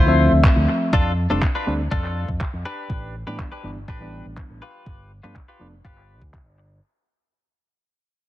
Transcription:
0.00 0.27 D2 medium
0.00 0.31 E4 medium
0.00 0.32 F4 medium
0.00 0.32 C5 medium
0.06 0.91 F3 medium
0.06 0.91 A3 medium
0.06 0.92 C4 medium
0.06 0.92 E5 medium
0.32 0.41 D2 medium
0.44 kick loud
0.44 clap loud
0.56 0.66 D2 medium
0.69 muted clean electric guitar stroke soft
0.93 1.26 F2 medium
0.93 1.12 D4 loud
0.93 1.12 F4 medium
0.93 1.12 A4 loud
0.93 kick loud
1.30 1.40 F1 medium
1.30 1.43 G3 medium
1.30 1.43 A3 medium
1.30 1.44 C4 medium
1.30 1.42 D4 medium
1.30 1.44 D4 medium
1.30 1.42 F4 medium
1.30 1.42 A4 loud
1.42 kick loud
1.42 clap loud
1.55 1.73 D4 medium
1.55 1.73 F4 medium
1.55 1.73 B4 medium
1.67 1.86 D2 medium
1.67 1.80 G3 medium
1.67 1.81 A3 medium
1.67 1.81 C4 medium
1.67 1.81 D4 medium
1.91 2.24 F2 medium
1.91 2.28 D4 medium
1.91 2.28 F4 medium
1.91 2.28 A4 medium
1.91 kick loud
2.04 clap soft
2.28 2.38 F2 medium
2.28 kick medium
2.41 kick loud
2.41 clap loud
2.53 2.63 F2 medium
2.65 3.14 D4 medium
2.65 3.14 G4 medium
2.65 3.14 B4 loud
2.90 3.22 A1 medium
2.90 kick loud
3.27 3.36 A2 medium
3.27 3.48 E3 medium
3.27 3.48 G3 medium
3.27 3.49 B3 medium
3.27 3.49 D4 medium
3.27 3.39 D4 medium
3.27 3.39 G4 medium
3.27 3.39 B4 medium
3.39 kick loud
3.39 clap loud
3.52 3.70 D4 medium
3.52 3.70 G4 medium
3.52 3.70 B4 medium
3.64 3.83 G1 medium
3.64 3.77 E3 medium
3.64 3.77 G3 medium
3.64 3.77 B3 medium
3.64 3.78 D4 medium
3.88 4.21 A1 medium
3.88 4.25 D4 medium
3.88 4.25 G4 medium
3.88 4.25 B4 medium
3.88 kick loud
4.00 4.60 E3 medium
4.00 4.60 G3 medium
4.00 4.61 B3 medium
4.00 4.61 D4 medium
4.26 4.35 A1 medium
4.37 kick loud
4.37 clap medium
4.50 4.59 A1 medium
4.62 5.11 F4 medium
4.62 5.11 G4 medium
4.62 5.11 B4 medium
4.86 5.19 G1 medium
4.86 kick loud
5.23 5.33 G2 medium
5.23 5.37 F3 medium
5.23 5.37 A3 medium
5.23 5.37 B3 medium
5.23 5.37 D4 medium
5.23 5.35 F4 medium
5.23 5.36 G4 medium
5.23 5.36 B4 medium
5.36 kick loud
5.36 clap loud
5.48 5.66 F4 medium
5.48 5.66 G4 medium
5.48 5.67 B4 medium
5.60 5.80 F1 medium
5.60 5.74 F3 medium
5.60 5.74 A3 medium
5.60 5.74 B3 medium
5.60 5.74 D4 medium
5.85 6.21 G1 medium
5.85 6.22 F4 medium
5.85 6.22 G4 medium
5.85 6.22 B4 medium
5.85 kick loud
5.98 clap soft
6.21 6.46 D2 medium
6.21 kick medium
6.34 kick loud
6.34 clap loud
6.46 6.79 G1 medium
6.58 muted clean electric guitar stroke soft

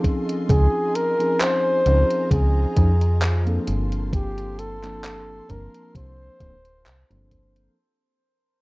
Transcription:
0.00 1.13 F3 medium
0.00 1.14 C4 medium
0.00 1.14 C#4 medium
0.00 1.14 D#4 medium
0.00 1.15 G#4 medium
0.00 3.64 D#5 medium
0.00 3.64 G#5 medium
0.00 1.82 C6 medium
0.00 kick medium
0.04 7.73 F4 medium
0.04 closed hi-hat medium
0.29 closed hi-hat soft
0.49 0.68 C#2 loud
0.49 0.97 G#4 loud
0.49 kick loud
0.49 closed hi-hat medium
0.95 1.43 A#4 loud
0.95 closed hi-hat medium
1.19 1.81 F3 medium
1.19 1.81 C4 medium
1.19 1.81 C#4 medium
1.19 1.81 D#4 medium
1.19 1.82 G#4 medium
1.19 closed hi-hat medium
1.40 2.32 C5 loud
1.40 clap loud
1.40 closed hi-hat medium
1.85 2.04 C#2 loud
1.85 2.72 F3 medium
1.85 2.72 C4 medium
1.85 2.72 C#4 medium
1.85 2.72 D#4 medium
1.85 2.72 G#4 medium
1.85 3.66 A#5 medium
1.85 closed hi-hat medium
2.11 closed hi-hat soft
2.31 2.66 C#2 medium
2.31 3.64 G#4 medium
2.31 kick loud
2.31 closed hi-hat medium
2.76 3.59 F2 loud
2.76 2.89 F3 medium
2.76 2.89 C4 medium
2.76 2.90 C#4 medium
2.76 2.90 D#4 medium
2.76 2.90 G#4 loud
2.76 kick loud
2.76 closed hi-hat medium
3.01 closed hi-hat soft
3.22 clap loud
3.22 closed hi-hat medium
3.45 4.76 F3 medium
3.45 4.77 A#3 medium
3.45 4.77 C4 medium
3.45 4.78 D4 medium
3.45 4.78 A4 medium
3.45 closed hi-hat soft
3.67 5.41 G1 medium
3.67 7.73 A#3 medium
3.67 7.73 A5 medium
3.67 7.73 C6 medium
3.67 closed hi-hat medium
3.92 closed hi-hat soft
4.13 4.61 G4 medium
4.13 kick loud
4.13 closed hi-hat medium
4.38 closed hi-hat soft
4.59 5.52 A4 loud
4.59 closed hi-hat medium
4.83 5.44 F3 medium
4.83 5.44 A#3 medium
4.83 5.45 C4 medium
4.83 5.45 D4 medium
4.83 5.45 A4 medium
4.83 clap soft
4.83 closed hi-hat medium
5.04 clap loud
5.04 closed hi-hat medium
5.48 5.68 G1 loud
5.48 6.35 F3 medium
5.48 6.35 A#3 medium
5.48 6.35 C4 medium
5.48 6.36 D4 medium
5.48 6.36 A#4 medium
5.48 5.95 A#4 loud
5.48 kick medium
5.48 closed hi-hat medium
5.74 closed hi-hat medium
5.95 6.29 C2 medium
5.95 7.28 C5 loud
5.95 kick loud
5.95 closed hi-hat medium
6.40 6.87 D1 medium
6.40 6.53 F3 medium
6.40 6.53 A#3 medium
6.40 6.53 C4 medium
6.40 6.53 D4 medium
6.40 6.54 A4 loud
6.40 kick loud
6.40 closed hi-hat medium
6.65 closed hi-hat medium
6.86 7.04 C2 medium
6.86 clap loud
6.86 closed hi-hat medium
7.10 7.68 G1 medium
7.10 7.74 F3 medium
7.10 7.74 A#3 medium
7.10 7.75 C4 medium
7.10 7.75 D4 medium
7.10 7.75 A4 medium
7.10 closed hi-hat soft
7.31 kick medium
7.31 closed hi-hat medium
7.56 closed hi-hat medium

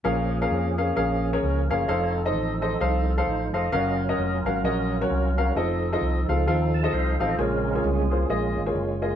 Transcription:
0.04 0.44 A#1 medium
0.04 0.74 A#2 medium
0.04 1.85 F3 medium
0.04 1.85 A#3 medium
0.04 0.34 C#4 medium
0.04 1.40 C#4 medium
0.04 0.34 G#4 medium
0.04 1.40 G#4 medium
0.04 0.34 A#4 medium
0.04 0.34 F5 medium
0.41 0.67 C#4 medium
0.41 0.67 G#4 medium
0.41 0.67 A#4 medium
0.41 0.67 F5 medium
0.51 0.90 F2 medium
0.78 0.92 C#4 medium
0.78 0.92 G#4 medium
0.78 0.92 A#4 medium
0.78 0.92 F5 medium
0.96 1.36 A#1 medium
0.96 1.25 C#4 medium
0.96 1.25 G#4 medium
0.96 1.26 A#4 medium
0.96 1.26 F5 medium
1.33 1.59 C#4 medium
1.33 1.59 G#4 medium
1.33 1.59 A#4 medium
1.33 1.59 C#5 medium
1.43 1.66 C#2 medium
1.43 1.69 C#4 soft
1.43 1.69 A#4 medium
1.70 1.86 F#1 medium
1.70 1.84 C#4 medium
1.70 2.14 F4 medium
1.70 1.84 G#4 medium
1.70 1.84 A#4 medium
1.70 2.14 C#5 medium
1.70 1.84 F5 medium
1.88 2.35 F1 medium
1.88 3.69 F3 medium
1.88 3.06 C4 medium
1.88 2.18 D#4 medium
1.88 3.06 D#4 medium
1.88 2.17 A4 medium
1.88 3.06 A4 medium
1.88 2.18 C5 medium
1.88 2.18 F5 medium
2.25 2.51 D#4 medium
2.25 2.51 A4 medium
2.25 2.51 C5 medium
2.25 2.51 D#5 medium
2.35 2.74 A1 loud
2.62 2.75 D#4 medium
2.62 2.75 A4 medium
2.62 2.75 C5 medium
2.62 2.76 D#5 medium
2.81 3.20 C2 loud
2.81 3.10 D#4 medium
2.81 3.10 A4 medium
2.81 3.10 C5 medium
2.81 3.10 F5 medium
3.09 3.26 C4 medium
3.09 3.26 A4 medium
3.18 3.43 D#4 medium
3.18 3.43 A4 medium
3.18 3.43 C5 medium
3.18 3.43 F5 medium
3.27 3.54 A1 medium
3.27 3.53 D#4 soft
3.27 3.53 C5 medium
3.54 3.70 F1 medium
3.54 3.67 D#4 medium
3.54 3.67 A4 medium
3.54 3.67 C5 medium
3.54 3.97 D#5 medium
3.54 3.67 F5 medium
3.72 4.11 F#1 medium
3.72 5.52 F#3 medium
3.72 4.01 C#4 medium
3.72 5.52 C#4 medium
3.72 5.52 F4 medium
3.72 4.01 F#4 medium
3.72 4.01 A#4 medium
3.72 5.52 A#4 medium
3.72 4.01 F5 loud
4.09 4.34 C#4 medium
4.09 4.34 F#4 medium
4.09 4.34 A#4 medium
4.09 4.34 D#5 medium
4.18 4.41 F1 medium
4.45 4.61 G#1 medium
4.45 4.59 C#4 medium
4.45 4.59 F#4 medium
4.45 4.59 A#4 medium
4.45 4.59 F5 medium
4.64 5.03 A#1 medium
4.64 4.93 C#4 medium
4.64 4.93 F#4 medium
4.64 4.93 A#4 medium
4.64 4.93 D#5 medium
5.01 5.26 C#4 medium
5.01 5.26 F#4 medium
5.01 5.26 A#4 medium
5.01 5.26 C#5 medium
5.10 5.49 C2 medium
5.38 5.51 C#4 medium
5.38 5.51 F#4 medium
5.38 5.51 A#4 medium
5.38 5.51 F5 medium
5.55 5.95 F1 medium
5.55 7.35 F3 medium
5.55 7.35 C4 medium
5.55 5.85 C4 medium
5.55 6.92 D#4 medium
5.55 5.85 F4 medium
5.55 6.92 A4 medium
5.55 5.85 A4 medium
5.55 5.85 D#5 medium
5.92 6.18 C4 medium
5.92 6.18 F4 medium
5.92 6.18 A4 medium
5.92 6.18 D#5 medium
6.01 6.25 C2 medium
6.28 6.44 C#2 medium
6.28 6.42 C4 medium
6.28 6.42 F4 medium
6.28 6.42 A4 medium
6.28 6.42 F5 medium
6.47 6.86 D#2 loud
6.47 6.76 C4 medium
6.47 6.76 F4 medium
6.47 6.76 A4 medium
6.47 6.76 F5 medium
6.74 6.91 A5 medium
6.83 7.09 C4 medium
6.83 7.09 F4 medium
6.83 7.09 A4 medium
6.83 7.09 D#5 medium
6.93 7.16 C2 medium
6.93 7.35 D#4 medium
6.93 7.35 A4 medium
6.93 7.40 C5 medium
6.93 7.18 F5 medium
7.20 7.36 A1 medium
7.20 7.33 C4 medium
7.20 7.33 F4 medium
7.20 7.34 A4 medium
7.20 7.37 D#5 medium
7.20 7.34 F5 medium
7.38 7.77 A#1 medium
7.38 8.07 A#2 medium
7.38 8.07 C#3 soft
7.38 8.07 G#3 soft
7.38 7.67 A#3 medium
7.38 8.08 C4 medium
7.38 7.83 C#4 medium
7.38 7.67 F4 medium
7.38 7.83 F4 medium
7.38 7.67 G#4 medium
7.38 7.86 A#4 loud
7.38 7.68 C#5 medium
7.75 8.00 A#3 medium
7.75 8.00 F4 medium
7.75 8.00 G#4 medium
7.75 8.01 C#5 medium
7.84 8.23 C2 medium
7.84 8.28 C#4 medium
7.84 8.28 F4 medium
7.84 8.31 G#4 medium
8.11 8.25 A#3 medium
8.11 8.25 F4 medium
8.11 8.25 G#4 medium
8.11 8.25 C5 medium
8.29 8.53 A#1 medium
8.29 8.75 G#3 medium
8.29 8.59 A#3 medium
8.29 8.75 C#4 medium
8.29 8.72 F4 medium
8.29 8.59 F4 medium
8.29 8.59 G#4 medium
8.29 8.59 D#5 medium
8.57 8.72 G#1 medium
8.66 8.92 A#3 medium
8.66 8.92 F4 medium
8.66 8.92 G#4 medium
8.66 8.92 C#5 medium
8.75 9.14 F#1 medium
8.75 9.16 G#3 medium
8.75 9.16 C#4 medium
8.75 9.16 F4 medium
9.02 9.16 A#3 medium
9.02 9.16 F4 medium
9.02 9.16 G#4 medium
9.02 9.16 D#5 medium

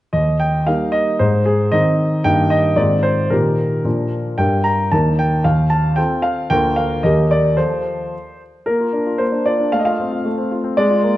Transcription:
0.13 0.65 D#2 soft
0.13 0.40 D#5 medium
0.40 0.67 G5 medium
0.67 1.16 G3 soft
0.67 1.16 A#3 soft
0.67 1.17 D#4 soft
0.67 0.93 F5 medium
0.92 1.19 D#5 medium
1.19 1.71 G#2 medium
1.19 1.46 C5 medium
1.46 1.73 G#4 medium
1.72 2.22 D#3 soft
1.72 2.22 C4 soft
1.72 2.22 D#4 soft
1.72 2.25 D#5 medium
2.24 2.76 G2 soft
2.24 2.74 D#3 soft
2.24 2.74 A#3 soft
2.24 2.74 D#4 soft
2.24 2.51 G5 medium
2.50 2.78 D#5 medium
2.76 3.29 G#2 soft
2.76 3.27 D#3 soft
2.76 3.27 C4 soft
2.76 3.27 F4 soft
2.76 3.04 D5 medium
3.03 3.31 C5 medium
3.30 3.83 A#2 soft
3.30 3.81 D#3 soft
3.30 3.81 D#4 soft
3.30 3.81 G4 soft
3.30 3.84 A#4 medium
3.85 4.37 A#2 soft
3.85 4.35 F3 soft
3.85 4.35 D4 soft
3.85 4.35 A#4 soft
4.38 4.91 G2 soft
4.38 4.89 G3 soft
4.38 4.89 D4 soft
4.38 4.89 A#4 soft
4.38 4.65 G5 medium
4.64 4.92 A#5 medium
4.92 5.43 D#2 soft
4.92 5.41 A#3 soft
4.92 5.41 D#4 soft
4.92 5.42 A#4 soft
4.92 5.19 A5 medium
5.19 5.45 G5 medium
5.44 5.96 D#2 soft
5.44 5.71 F5 medium
5.70 5.97 A5 medium
5.96 6.46 C4 soft
5.96 6.46 F4 soft
5.96 6.46 A4 soft
5.96 6.23 G5 medium
6.22 6.49 F5 medium
6.50 7.02 D2 medium
6.50 6.99 A#3 soft
6.50 7.00 F4 soft
6.50 7.00 A#4 soft
6.50 6.76 G5 medium
6.76 7.03 F5 medium
7.03 7.56 D#2 soft
7.03 7.54 A#3 soft
7.03 7.54 G4 soft
7.03 7.54 A#4 soft
7.03 7.30 D#5 medium
7.31 7.58 D5 medium
7.57 7.96 F3 soft
7.57 8.02 F4 soft
7.57 8.02 A4 soft
7.57 8.40 C5 medium
8.66 9.17 A#3 soft
8.66 9.21 A#4 medium
8.80 9.02 F4 soft
8.93 9.15 D4 soft
9.06 9.29 F4 soft
9.18 9.71 A#3 soft
9.18 9.46 C5 medium
9.32 9.54 D4 soft
9.46 9.68 F4 soft
9.46 9.73 D5 medium
9.60 9.73 D4 soft
9.72 10.23 A3 soft
9.72 9.80 F5 medium
9.79 9.87 D#5 medium
9.85 10.07 F4 soft
9.85 10.51 F5 medium
9.99 10.20 C4 soft
10.12 10.33 F4 soft
10.25 10.76 A3 soft
10.38 10.59 C4 soft
10.51 10.73 F4 soft
10.64 10.77 C4 soft
10.77 11.17 G#3 medium
10.77 11.17 D5 medium
10.90 11.12 F4 soft
11.03 11.17 A#3 soft

